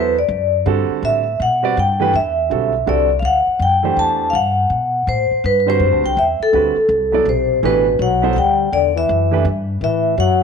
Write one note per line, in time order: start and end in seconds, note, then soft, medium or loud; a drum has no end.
0.00 0.28 E2 medium
0.00 0.14 F#3 medium
0.00 0.14 B3 medium
0.00 0.14 E4 medium
0.00 0.15 A4 medium
0.00 0.15 B4 medium
0.00 0.15 C5 medium
0.19 0.64 D5 medium
0.28 0.65 F#2 medium
0.66 0.88 G2 medium
0.66 1.22 D3 medium
0.66 1.22 G3 medium
0.66 1.22 C4 medium
0.66 1.22 F#4 medium
0.66 1.22 A4 medium
0.89 muted upright bass stroke soft
1.02 1.38 A2 medium
1.02 1.38 E5 medium
1.40 1.75 B2 medium
1.40 1.79 F#5 medium
1.63 1.75 G3 medium
1.63 1.75 C4 medium
1.63 1.75 F#4 medium
1.63 1.76 B4 medium
1.63 1.76 D5 medium
1.77 2.13 G2 medium
1.77 2.16 G5 medium
2.00 2.12 E3 medium
2.00 2.12 A3 medium
2.00 2.12 D4 medium
2.00 2.12 G4 medium
2.00 2.13 B4 medium
2.13 2.49 E2 medium
2.13 2.84 E5 medium
2.50 2.86 B1 medium
2.50 2.71 D3 medium
2.50 2.71 G3 soft
2.50 2.72 C4 soft
2.50 2.72 F#4 soft
2.50 2.72 A4 medium
2.86 3.22 C2 medium
2.86 3.08 D3 medium
2.86 3.08 G3 medium
2.86 3.08 C4 medium
2.86 3.08 F#4 medium
2.86 3.08 A4 medium
2.86 3.16 D5 medium
3.19 3.45 D2 medium
3.19 3.24 F5 medium
3.25 3.62 F#5 loud
3.47 muted upright bass stroke soft
3.59 3.95 F#2 medium
3.59 3.96 G5 medium
3.83 4.31 E3 medium
3.83 4.31 A3 medium
3.83 4.31 D4 medium
3.83 4.32 G4 medium
3.83 4.32 C5 medium
3.96 4.32 E2 medium
3.96 4.31 A5 medium
4.30 4.69 G2 medium
4.30 4.34 F5 medium
4.35 5.10 F#5 loud
4.70 5.06 B2 medium
5.07 5.29 A2 medium
5.07 5.46 C5 medium
5.31 muted upright bass stroke soft
5.44 5.79 G2 medium
5.44 5.52 B4 medium
5.60 5.68 B4 medium
5.66 6.14 D3 medium
5.66 6.14 G3 medium
5.66 6.14 C4 medium
5.66 6.15 F#4 medium
5.66 6.15 C5 medium
5.66 6.06 C5 medium
5.80 5.92 F#2 medium
5.92 6.03 D2 medium
6.04 6.16 C2 medium
6.04 6.18 G5 medium
6.17 6.39 E2 medium
6.17 6.42 E5 medium
6.40 7.30 A4 medium
6.40 muted upright bass stroke soft
6.53 6.75 D2 medium
6.53 6.74 D3 medium
6.53 6.74 G3 medium
6.53 6.75 C4 medium
6.53 6.75 F#4 medium
6.53 6.75 B4 medium
6.77 muted upright bass stroke soft
6.89 7.25 C2 medium
7.12 7.25 F#3 medium
7.12 7.25 B3 medium
7.12 7.25 E4 medium
7.12 7.26 A4 medium
7.12 7.26 D5 medium
7.25 7.61 B1 medium
7.25 7.61 C3 medium
7.25 7.65 C5 medium
7.63 7.98 A1 medium
7.63 7.97 B2 medium
7.63 7.84 E3 medium
7.63 7.84 A3 medium
7.63 7.84 D4 medium
7.63 7.85 G4 medium
7.63 7.85 B4 medium
7.63 7.98 B4 medium
7.99 8.35 B1 medium
7.99 8.29 F#3 medium
7.99 8.32 F#5 medium
8.22 8.34 F#3 medium
8.22 8.34 B3 medium
8.22 8.35 E4 medium
8.22 8.35 A4 medium
8.22 8.35 C5 medium
8.31 8.35 F#3 medium
8.31 8.37 F#5 medium
8.36 8.71 D2 medium
8.36 8.70 G3 medium
8.36 8.74 G5 medium
8.72 9.08 E2 medium
8.72 8.94 D3 medium
8.72 8.94 D5 medium
8.96 9.42 E3 medium
8.96 9.43 E5 medium
9.09 9.44 F#2 medium
9.31 9.44 E3 medium
9.31 9.44 A3 medium
9.31 9.44 D4 medium
9.31 9.44 G4 medium
9.31 9.45 B4 medium
9.45 9.80 G2 medium
9.81 10.17 A2 medium
9.81 10.16 E3 medium
9.81 10.17 E5 medium
10.18 10.43 F#2 medium
10.18 10.43 F#3 medium
10.18 10.43 F#5 medium